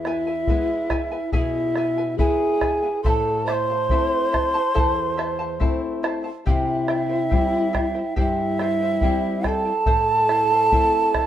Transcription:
Already playing: E2 E4 E5
0.05 E4 B4 E5 G#5, bombo rim
0.27 E4 B4 G#5
0.47 G#3 B3 E4 B4 E5 G#5, bombo low
0.90 E4 B4 E5 G#5, bombo rim, bombo low
1.12 E4 B4 G#5
1.32 B2 E4 G#4 B4 E5 G#5, bombo low
1.76 E4 B4 E5 G#5, bombo rim
1.98 E4 B4 G#5
2.18 G#3 B3 E4 G#4 B4 E5 G#5, bombo low
2.61 E4 B4 E5 G#5, bombo rim, bombo low
2.83 E4 B4 G#5
3.03 A2 E4 A4 C5 E5 A5 C6, bombo low
3.08 A5
3.46 E4 C5 E5 A5 D6, bombo rim
3.53 C6
3.70 E4 C5 A5
3.89 A3 C4 E4 C5 E5 A5, bombo low
4.32 E4 C5 E5 A5, bombo rim, bombo low
4.54 E4 C5 A5
4.74 E2 E4 A4 C5 E5 A5, bombo low
5.17 E4 C5 E5 A5, bombo rim
5.39 E4 C5 A5
5.60 A3 C4 E4 C5 E5 A5, bombo low
6.03 E4 C5 E5 A5, bombo rim
6.24 E4 C5 A5
6.46 C3 E4 G4 C5 E5 F5 G5, bombo low
6.53 E5
6.88 E4 C5 E5 G5, bombo rim
7.09 E4 C5 G5
7.29 G3 E4 C5 E5 G5, bombo low
7.34 C4 E4
7.73 E4 C5 E5 G5, bombo rim, bombo low
7.94 E4 C5 G5
8.16 G2 E4 G4 C5 E5 G5, bombo low
8.21 E5
8.59 E4 C5 E5 G5, bombo rim
8.82 E4 C5 G5
9.01 G3 C4 E4 C5 E5 G5, bombo low
9.44 E4 A4 C5 E5 G5 A5, bombo rim, bombo low
9.65 E4 C5 G5
9.86 A2 E4 A4 C5 E5 A5, bombo low
10.29 E4 C5 E5 A5, bombo rim
10.51 E4 C5 A5
10.72 A3 C4 E4 C5 E5 A5, bombo low
11.14 E4 C5 E5 A5, bombo rim, bombo low

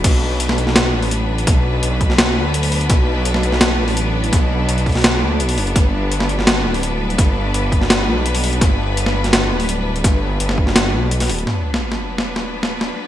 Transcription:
0.04 B1 F#3 B3 D4 B4, kick, snare, closed hi-hat, crash
0.40 closed hi-hat
0.49 snare
0.58 closed hi-hat
0.67 snare
0.76 snare, closed hi-hat
0.93 A1
1.02 open hi-hat
1.11 closed hi-hat
1.38 closed hi-hat
1.47 B1, kick, snare, closed hi-hat
1.83 B1, closed hi-hat
2.01 kick, closed hi-hat
2.10 snare
2.18 snare, closed hi-hat
2.37 D2
2.54 closed hi-hat
2.63 open hi-hat
2.72 open hi-hat
2.81 closed hi-hat
2.90 B1, kick, snare, closed hi-hat
3.25 closed hi-hat
3.34 snare
3.43 closed hi-hat
3.52 snare
3.61 snare, closed hi-hat
3.79 A1
3.88 open hi-hat
3.97 closed hi-hat
4.24 closed hi-hat
4.32 B1, kick, snare, closed hi-hat
4.68 B1, closed hi-hat
4.78 closed hi-hat
4.86 kick, open hi-hat
4.89 open hi-hat
4.92 snare, open hi-hat
4.95 open hi-hat
4.98 open hi-hat
5.01 snare, closed hi-hat, open hi-hat
5.22 D2
5.40 B1, closed hi-hat
5.49 open hi-hat
5.57 F#1, open hi-hat
5.67 closed hi-hat
5.76 G1 G3 B4, kick, snare, closed hi-hat
6.12 closed hi-hat
6.20 snare
6.29 closed hi-hat
6.39 snare
6.47 snare, closed hi-hat
6.65 D1
6.74 open hi-hat
6.83 closed hi-hat
7.10 closed hi-hat
7.18 G1, kick, snare, closed hi-hat
7.54 G1, closed hi-hat
7.72 kick, closed hi-hat
7.81 snare
7.90 snare, closed hi-hat
8.08 B1
8.26 closed hi-hat
8.35 open hi-hat
8.44 open hi-hat
8.53 closed hi-hat
8.61 G1, kick, snare, closed hi-hat
8.97 closed hi-hat
9.06 snare
9.24 snare, closed hi-hat
9.33 snare, closed hi-hat
9.51 D1
9.60 open hi-hat
9.69 closed hi-hat
9.96 closed hi-hat
10.04 G1, kick, snare, closed hi-hat
10.40 G1, closed hi-hat
10.49 snare
10.58 kick
10.67 snare
10.76 snare, closed hi-hat
10.94 B1
11.11 closed hi-hat
11.20 snare, open hi-hat
11.29 D1, open hi-hat
11.38 closed hi-hat
11.47 F#3 B3 D4 B4, snare, sub drop
11.74 snare
11.92 snare
12.18 snare
12.36 snare
12.63 snare
12.81 snare

